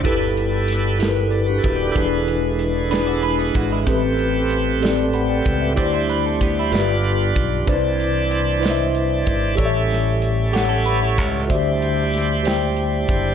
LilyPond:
<<
  \new Staff \with { instrumentName = "Tine electric piano" } { \time 6/8 \key g \major \tempo 4. = 63 << { r2 r16 <d' g'>16 <fis' b'>16 <a' d''>16~ | <a' d''>16 r2 r8. | r2 <fis'' b''>16 <d'' g''>8 <b' e''>16~ | <b' e''>16 r2 r8. |
r2. | r2. | r2. | } \\ { <e' g' a' b'>4~ <e' g' a' b'>16 r16 <e' g' a' bes' b'>8 r4 | <d' e' g' gis' b'>4~ <d' e' g' gis' b'>16 r16 <d' e' gis' b'>4~ <d' e' gis' b'>16 r16 | <c' g' a' b'>4~ <c' g' a' b'>16 r16 <c' g' a' d''>4~ <c' g' a' d''>16 r16 | <e' g' c'' d''>4~ <e' g' c'' d''>16 r16 <f' g' b' d''>4~ <f' g' b' d''>16 r16 |
<d' e' b' c'' d''>4~ <d' e' b' c'' d''>16 r16 <e' b' c'' ees'' e''>4~ <e' b' c'' ees'' e''>16 r16 | <g' a' cis'' d'' e''>4~ <g' a' cis'' d'' e''>16 r16 <g' a' cis'' fis''>4~ <g' a' cis'' fis''>16 r16 | <fis' g' c'' d'' e''>4~ <fis' g' c'' d'' e''>16 r16 <g' c'' d'' g''>4~ <g' c'' d'' g''>16 r16 | } >> }
  \new Staff \with { instrumentName = "Tine electric piano" } { \clef bass \time 6/8 \key g \major g,4. r4. | e4. r4. | a,4. r4. | d4. g,4. |
c4. r4. | a,4. r4. | d4. r4. | }
  \new Staff \with { instrumentName = "Clean electric guitar" } { \time 6/8 \key g \major r2. | r4. <d' b'>16 <fis' d''>16 <d' b'>16 <b gis'>16 fis'16 <gis e'>16~ | <gis e'>16 r2 r8. | <fis' d''>16 <e' c''>16 <d' b'>16 <c' a'>16 <b g'>16 <g e'>8 r4 r16 |
r2. | r4. <b g'>16 <cis' a'>16 b'16 <e' cis''>8. | r2. | }
  \new Staff \with { instrumentName = "Tonewheel organ" } { \time 6/8 \key g \major << { r4. r16 <b' e''>16 <a' d''>16 <fis' b'>16 <e' a'>16 <d' g'>16~ | <d' g'>16 r2 r8. | r2. | r2. |
r2. | r2. | r2. | } \\ { <g b e' a'>2. | <g gis d' e' b'>2. | <a c' g' b'>2. | <g d' e' c''>4. <g d' f' b'>4. |
<e c' d' d''>2. | <g cis' e' a'>2. | <g d' e' c''>2. | } >> }
  \new Staff \with { instrumentName = "Fingered electric bass" } { \clef bass \time 6/8 \key g \major g,,2~ g,,8 ees,,8 | e,,2~ e,,8 gis,,8 | a,,2~ a,,8 cis,8 | d,4. g,,4 b,,8 |
c,2~ c,8 aes,,8 | a,,2~ a,,8 cis,8 | d,2~ d,8 fis,,8 | }
  \new DrumStaff \with { instrumentName = "Drums" } \drummode { \time 6/8 <hh bd>8 hh8 <hh sn>8 <hh sn>8 hh8 <hh bd>8 | <hh bd>8 hh8 hh8 <hh sn>8 hh8 <hh bd>8 | <hh bd>8 hh8 hh8 <hh sn>8 hh8 <hh bd>8 | <hh bd>8 hh8 <hh bd>8 <hh sn>8 hh8 <hh bd>8 |
<hh bd>8 hh8 hh8 <hh sn>8 hh8 <hh bd>8 | <hh bd>8 <hh sn>8 hh8 <hh sn>8 hh8 <hh bd>8 | <hh bd>8 hh8 <hh sn>8 <hh sn>8 hh8 <hh bd>8 | }
>>